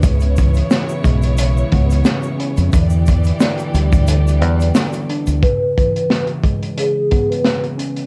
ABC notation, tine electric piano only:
X:1
M:4/4
L:1/8
Q:"Swing 16ths" 1/4=89
K:C#m
V:1 name="Tine electric piano" clef=bass
C, E, C, G, C, B, C, C | =D, E, D, =G, D, B, D, =D | C, E, C, G, C, B, C, C |]